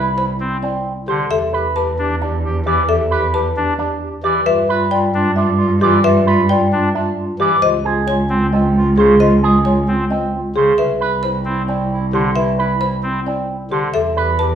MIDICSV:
0, 0, Header, 1, 7, 480
1, 0, Start_track
1, 0, Key_signature, 0, "major"
1, 0, Tempo, 451128
1, 1391, Time_signature, 7, 3, 24, 8
1, 15482, End_track
2, 0, Start_track
2, 0, Title_t, "Xylophone"
2, 0, Program_c, 0, 13
2, 190, Note_on_c, 0, 83, 64
2, 502, Note_off_c, 0, 83, 0
2, 1390, Note_on_c, 0, 76, 77
2, 1702, Note_off_c, 0, 76, 0
2, 1871, Note_on_c, 0, 81, 66
2, 2183, Note_off_c, 0, 81, 0
2, 3072, Note_on_c, 0, 76, 78
2, 3383, Note_off_c, 0, 76, 0
2, 3554, Note_on_c, 0, 81, 66
2, 3863, Note_off_c, 0, 81, 0
2, 4748, Note_on_c, 0, 76, 86
2, 5062, Note_off_c, 0, 76, 0
2, 5226, Note_on_c, 0, 79, 69
2, 5541, Note_off_c, 0, 79, 0
2, 6429, Note_on_c, 0, 76, 94
2, 6742, Note_off_c, 0, 76, 0
2, 6910, Note_on_c, 0, 79, 76
2, 7222, Note_off_c, 0, 79, 0
2, 8110, Note_on_c, 0, 75, 91
2, 8422, Note_off_c, 0, 75, 0
2, 8594, Note_on_c, 0, 80, 78
2, 8904, Note_off_c, 0, 80, 0
2, 9791, Note_on_c, 0, 75, 80
2, 10103, Note_off_c, 0, 75, 0
2, 10268, Note_on_c, 0, 80, 67
2, 10582, Note_off_c, 0, 80, 0
2, 11471, Note_on_c, 0, 76, 70
2, 11783, Note_off_c, 0, 76, 0
2, 11947, Note_on_c, 0, 83, 65
2, 12261, Note_off_c, 0, 83, 0
2, 13146, Note_on_c, 0, 76, 76
2, 13461, Note_off_c, 0, 76, 0
2, 13627, Note_on_c, 0, 83, 68
2, 13941, Note_off_c, 0, 83, 0
2, 14828, Note_on_c, 0, 76, 76
2, 15142, Note_off_c, 0, 76, 0
2, 15311, Note_on_c, 0, 81, 69
2, 15482, Note_off_c, 0, 81, 0
2, 15482, End_track
3, 0, Start_track
3, 0, Title_t, "Clean electric guitar"
3, 0, Program_c, 1, 27
3, 0, Note_on_c, 1, 71, 72
3, 261, Note_off_c, 1, 71, 0
3, 667, Note_on_c, 1, 60, 61
3, 981, Note_off_c, 1, 60, 0
3, 1148, Note_on_c, 1, 72, 51
3, 1462, Note_off_c, 1, 72, 0
3, 1629, Note_on_c, 1, 71, 79
3, 1942, Note_off_c, 1, 71, 0
3, 2351, Note_on_c, 1, 62, 69
3, 2663, Note_off_c, 1, 62, 0
3, 2831, Note_on_c, 1, 74, 56
3, 3143, Note_off_c, 1, 74, 0
3, 3307, Note_on_c, 1, 71, 82
3, 3621, Note_off_c, 1, 71, 0
3, 4029, Note_on_c, 1, 62, 74
3, 4342, Note_off_c, 1, 62, 0
3, 4508, Note_on_c, 1, 74, 63
3, 4822, Note_off_c, 1, 74, 0
3, 4991, Note_on_c, 1, 71, 89
3, 5303, Note_off_c, 1, 71, 0
3, 5706, Note_on_c, 1, 62, 78
3, 6021, Note_off_c, 1, 62, 0
3, 6189, Note_on_c, 1, 74, 72
3, 6502, Note_off_c, 1, 74, 0
3, 6669, Note_on_c, 1, 71, 99
3, 6982, Note_off_c, 1, 71, 0
3, 7391, Note_on_c, 1, 62, 77
3, 7703, Note_off_c, 1, 62, 0
3, 7875, Note_on_c, 1, 74, 68
3, 8184, Note_off_c, 1, 74, 0
3, 8352, Note_on_c, 1, 68, 88
3, 8663, Note_off_c, 1, 68, 0
3, 9075, Note_on_c, 1, 60, 72
3, 9384, Note_off_c, 1, 60, 0
3, 9553, Note_on_c, 1, 72, 60
3, 9863, Note_off_c, 1, 72, 0
3, 10033, Note_on_c, 1, 68, 85
3, 10343, Note_off_c, 1, 68, 0
3, 10753, Note_on_c, 1, 60, 71
3, 11063, Note_off_c, 1, 60, 0
3, 11234, Note_on_c, 1, 72, 55
3, 11544, Note_off_c, 1, 72, 0
3, 11711, Note_on_c, 1, 71, 82
3, 12023, Note_off_c, 1, 71, 0
3, 12429, Note_on_c, 1, 60, 69
3, 12742, Note_off_c, 1, 60, 0
3, 12911, Note_on_c, 1, 72, 58
3, 13223, Note_off_c, 1, 72, 0
3, 13391, Note_on_c, 1, 71, 79
3, 13703, Note_off_c, 1, 71, 0
3, 14115, Note_on_c, 1, 60, 67
3, 14424, Note_off_c, 1, 60, 0
3, 14589, Note_on_c, 1, 72, 54
3, 14902, Note_off_c, 1, 72, 0
3, 15073, Note_on_c, 1, 71, 84
3, 15383, Note_off_c, 1, 71, 0
3, 15482, End_track
4, 0, Start_track
4, 0, Title_t, "Marimba"
4, 0, Program_c, 2, 12
4, 184, Note_on_c, 2, 72, 57
4, 500, Note_off_c, 2, 72, 0
4, 667, Note_on_c, 2, 74, 60
4, 981, Note_off_c, 2, 74, 0
4, 1150, Note_on_c, 2, 67, 69
4, 1395, Note_on_c, 2, 69, 79
4, 1462, Note_off_c, 2, 67, 0
4, 1704, Note_off_c, 2, 69, 0
4, 1877, Note_on_c, 2, 71, 64
4, 2185, Note_off_c, 2, 71, 0
4, 2359, Note_on_c, 2, 74, 51
4, 2665, Note_off_c, 2, 74, 0
4, 2839, Note_on_c, 2, 67, 73
4, 3072, Note_on_c, 2, 69, 81
4, 3146, Note_off_c, 2, 67, 0
4, 3383, Note_off_c, 2, 69, 0
4, 3558, Note_on_c, 2, 71, 70
4, 3865, Note_off_c, 2, 71, 0
4, 4034, Note_on_c, 2, 74, 55
4, 4344, Note_off_c, 2, 74, 0
4, 4513, Note_on_c, 2, 67, 74
4, 4745, Note_on_c, 2, 71, 93
4, 4823, Note_off_c, 2, 67, 0
4, 5061, Note_off_c, 2, 71, 0
4, 5226, Note_on_c, 2, 74, 71
4, 5541, Note_off_c, 2, 74, 0
4, 5702, Note_on_c, 2, 76, 66
4, 6020, Note_off_c, 2, 76, 0
4, 6185, Note_on_c, 2, 67, 83
4, 6426, Note_on_c, 2, 71, 94
4, 6501, Note_off_c, 2, 67, 0
4, 6741, Note_off_c, 2, 71, 0
4, 6922, Note_on_c, 2, 74, 74
4, 7227, Note_off_c, 2, 74, 0
4, 7398, Note_on_c, 2, 76, 62
4, 7705, Note_off_c, 2, 76, 0
4, 7872, Note_on_c, 2, 67, 81
4, 8110, Note_on_c, 2, 72, 88
4, 8183, Note_off_c, 2, 67, 0
4, 8422, Note_off_c, 2, 72, 0
4, 8586, Note_on_c, 2, 73, 64
4, 8901, Note_off_c, 2, 73, 0
4, 9072, Note_on_c, 2, 75, 55
4, 9383, Note_off_c, 2, 75, 0
4, 9550, Note_on_c, 2, 68, 77
4, 9788, Note_on_c, 2, 72, 68
4, 9863, Note_off_c, 2, 68, 0
4, 10102, Note_off_c, 2, 72, 0
4, 10274, Note_on_c, 2, 73, 61
4, 10584, Note_off_c, 2, 73, 0
4, 10751, Note_on_c, 2, 75, 61
4, 11063, Note_off_c, 2, 75, 0
4, 11232, Note_on_c, 2, 68, 75
4, 11479, Note_on_c, 2, 71, 76
4, 11543, Note_off_c, 2, 68, 0
4, 11785, Note_off_c, 2, 71, 0
4, 11957, Note_on_c, 2, 72, 64
4, 12265, Note_off_c, 2, 72, 0
4, 12431, Note_on_c, 2, 74, 55
4, 12743, Note_off_c, 2, 74, 0
4, 12911, Note_on_c, 2, 67, 72
4, 13152, Note_on_c, 2, 71, 65
4, 13223, Note_off_c, 2, 67, 0
4, 13463, Note_off_c, 2, 71, 0
4, 13628, Note_on_c, 2, 72, 64
4, 13942, Note_off_c, 2, 72, 0
4, 14114, Note_on_c, 2, 74, 57
4, 14424, Note_off_c, 2, 74, 0
4, 14593, Note_on_c, 2, 67, 73
4, 14839, Note_on_c, 2, 69, 76
4, 14903, Note_off_c, 2, 67, 0
4, 15146, Note_off_c, 2, 69, 0
4, 15311, Note_on_c, 2, 71, 62
4, 15482, Note_off_c, 2, 71, 0
4, 15482, End_track
5, 0, Start_track
5, 0, Title_t, "Clarinet"
5, 0, Program_c, 3, 71
5, 0, Note_on_c, 3, 64, 74
5, 118, Note_off_c, 3, 64, 0
5, 192, Note_on_c, 3, 64, 58
5, 360, Note_off_c, 3, 64, 0
5, 424, Note_on_c, 3, 64, 55
5, 594, Note_off_c, 3, 64, 0
5, 674, Note_on_c, 3, 64, 44
5, 841, Note_off_c, 3, 64, 0
5, 908, Note_on_c, 3, 64, 35
5, 1077, Note_off_c, 3, 64, 0
5, 1388, Note_on_c, 3, 67, 37
5, 1557, Note_off_c, 3, 67, 0
5, 1622, Note_on_c, 3, 67, 52
5, 1793, Note_off_c, 3, 67, 0
5, 1868, Note_on_c, 3, 67, 54
5, 2037, Note_off_c, 3, 67, 0
5, 2115, Note_on_c, 3, 67, 61
5, 2281, Note_off_c, 3, 67, 0
5, 2358, Note_on_c, 3, 67, 58
5, 2523, Note_off_c, 3, 67, 0
5, 2587, Note_on_c, 3, 67, 79
5, 2756, Note_off_c, 3, 67, 0
5, 2831, Note_on_c, 3, 67, 70
5, 2999, Note_off_c, 3, 67, 0
5, 3076, Note_on_c, 3, 67, 69
5, 3242, Note_off_c, 3, 67, 0
5, 3310, Note_on_c, 3, 67, 79
5, 3478, Note_off_c, 3, 67, 0
5, 3545, Note_on_c, 3, 67, 68
5, 3715, Note_off_c, 3, 67, 0
5, 3789, Note_on_c, 3, 67, 55
5, 3957, Note_off_c, 3, 67, 0
5, 4038, Note_on_c, 3, 67, 43
5, 4204, Note_off_c, 3, 67, 0
5, 4266, Note_on_c, 3, 67, 38
5, 4436, Note_off_c, 3, 67, 0
5, 4756, Note_on_c, 3, 65, 41
5, 4922, Note_off_c, 3, 65, 0
5, 4989, Note_on_c, 3, 65, 56
5, 5157, Note_off_c, 3, 65, 0
5, 5237, Note_on_c, 3, 65, 56
5, 5403, Note_off_c, 3, 65, 0
5, 5465, Note_on_c, 3, 65, 63
5, 5635, Note_off_c, 3, 65, 0
5, 5703, Note_on_c, 3, 65, 61
5, 5873, Note_off_c, 3, 65, 0
5, 5938, Note_on_c, 3, 65, 82
5, 6110, Note_off_c, 3, 65, 0
5, 6180, Note_on_c, 3, 65, 89
5, 6352, Note_off_c, 3, 65, 0
5, 6424, Note_on_c, 3, 65, 76
5, 6594, Note_off_c, 3, 65, 0
5, 6671, Note_on_c, 3, 65, 86
5, 6839, Note_off_c, 3, 65, 0
5, 6917, Note_on_c, 3, 65, 75
5, 7083, Note_off_c, 3, 65, 0
5, 7156, Note_on_c, 3, 65, 66
5, 7322, Note_off_c, 3, 65, 0
5, 7393, Note_on_c, 3, 65, 47
5, 7560, Note_off_c, 3, 65, 0
5, 7631, Note_on_c, 3, 65, 42
5, 7799, Note_off_c, 3, 65, 0
5, 8108, Note_on_c, 3, 65, 44
5, 8277, Note_off_c, 3, 65, 0
5, 8350, Note_on_c, 3, 65, 61
5, 8518, Note_off_c, 3, 65, 0
5, 8592, Note_on_c, 3, 65, 54
5, 8759, Note_off_c, 3, 65, 0
5, 8828, Note_on_c, 3, 65, 63
5, 8997, Note_off_c, 3, 65, 0
5, 9064, Note_on_c, 3, 65, 73
5, 9234, Note_off_c, 3, 65, 0
5, 9311, Note_on_c, 3, 65, 84
5, 9479, Note_off_c, 3, 65, 0
5, 9543, Note_on_c, 3, 65, 68
5, 9714, Note_off_c, 3, 65, 0
5, 9789, Note_on_c, 3, 65, 76
5, 9958, Note_off_c, 3, 65, 0
5, 10027, Note_on_c, 3, 65, 75
5, 10196, Note_off_c, 3, 65, 0
5, 10266, Note_on_c, 3, 65, 64
5, 10436, Note_off_c, 3, 65, 0
5, 10514, Note_on_c, 3, 65, 51
5, 10681, Note_off_c, 3, 65, 0
5, 10758, Note_on_c, 3, 65, 38
5, 10923, Note_off_c, 3, 65, 0
5, 10999, Note_on_c, 3, 65, 35
5, 11164, Note_off_c, 3, 65, 0
5, 11474, Note_on_c, 3, 64, 35
5, 11641, Note_off_c, 3, 64, 0
5, 11713, Note_on_c, 3, 64, 50
5, 11880, Note_off_c, 3, 64, 0
5, 11954, Note_on_c, 3, 64, 49
5, 12121, Note_off_c, 3, 64, 0
5, 12197, Note_on_c, 3, 64, 67
5, 12362, Note_off_c, 3, 64, 0
5, 12436, Note_on_c, 3, 64, 55
5, 12602, Note_off_c, 3, 64, 0
5, 12679, Note_on_c, 3, 64, 71
5, 12844, Note_off_c, 3, 64, 0
5, 12909, Note_on_c, 3, 64, 68
5, 13078, Note_off_c, 3, 64, 0
5, 13151, Note_on_c, 3, 64, 73
5, 13319, Note_off_c, 3, 64, 0
5, 13394, Note_on_c, 3, 64, 72
5, 13561, Note_off_c, 3, 64, 0
5, 13633, Note_on_c, 3, 64, 61
5, 13800, Note_off_c, 3, 64, 0
5, 13872, Note_on_c, 3, 64, 52
5, 14040, Note_off_c, 3, 64, 0
5, 14114, Note_on_c, 3, 64, 43
5, 14281, Note_off_c, 3, 64, 0
5, 14351, Note_on_c, 3, 64, 35
5, 14519, Note_off_c, 3, 64, 0
5, 14830, Note_on_c, 3, 67, 37
5, 14998, Note_off_c, 3, 67, 0
5, 15079, Note_on_c, 3, 67, 51
5, 15244, Note_off_c, 3, 67, 0
5, 15310, Note_on_c, 3, 67, 56
5, 15478, Note_off_c, 3, 67, 0
5, 15482, End_track
6, 0, Start_track
6, 0, Title_t, "Pipe organ"
6, 0, Program_c, 4, 19
6, 428, Note_on_c, 4, 60, 70
6, 609, Note_off_c, 4, 60, 0
6, 1155, Note_on_c, 4, 50, 64
6, 1333, Note_off_c, 4, 50, 0
6, 2110, Note_on_c, 4, 62, 72
6, 2290, Note_off_c, 4, 62, 0
6, 2825, Note_on_c, 4, 52, 76
6, 3007, Note_off_c, 4, 52, 0
6, 3793, Note_on_c, 4, 62, 87
6, 3972, Note_off_c, 4, 62, 0
6, 4506, Note_on_c, 4, 52, 66
6, 4687, Note_off_c, 4, 52, 0
6, 5471, Note_on_c, 4, 62, 92
6, 5651, Note_off_c, 4, 62, 0
6, 6192, Note_on_c, 4, 52, 76
6, 6371, Note_off_c, 4, 52, 0
6, 7153, Note_on_c, 4, 62, 82
6, 7332, Note_off_c, 4, 62, 0
6, 7864, Note_on_c, 4, 52, 87
6, 8047, Note_off_c, 4, 52, 0
6, 8826, Note_on_c, 4, 60, 85
6, 9007, Note_off_c, 4, 60, 0
6, 9553, Note_on_c, 4, 49, 72
6, 9732, Note_off_c, 4, 49, 0
6, 10512, Note_on_c, 4, 60, 70
6, 10691, Note_off_c, 4, 60, 0
6, 11233, Note_on_c, 4, 49, 64
6, 11412, Note_off_c, 4, 49, 0
6, 12184, Note_on_c, 4, 60, 69
6, 12367, Note_off_c, 4, 60, 0
6, 12908, Note_on_c, 4, 50, 73
6, 13089, Note_off_c, 4, 50, 0
6, 13863, Note_on_c, 4, 60, 79
6, 14046, Note_off_c, 4, 60, 0
6, 14587, Note_on_c, 4, 50, 60
6, 14768, Note_off_c, 4, 50, 0
6, 15482, End_track
7, 0, Start_track
7, 0, Title_t, "Cello"
7, 0, Program_c, 5, 42
7, 0, Note_on_c, 5, 36, 60
7, 1250, Note_off_c, 5, 36, 0
7, 1393, Note_on_c, 5, 40, 64
7, 4613, Note_off_c, 5, 40, 0
7, 4748, Note_on_c, 5, 43, 77
7, 7971, Note_off_c, 5, 43, 0
7, 8113, Note_on_c, 5, 37, 73
7, 11333, Note_off_c, 5, 37, 0
7, 11474, Note_on_c, 5, 36, 64
7, 14694, Note_off_c, 5, 36, 0
7, 14831, Note_on_c, 5, 40, 69
7, 15482, Note_off_c, 5, 40, 0
7, 15482, End_track
0, 0, End_of_file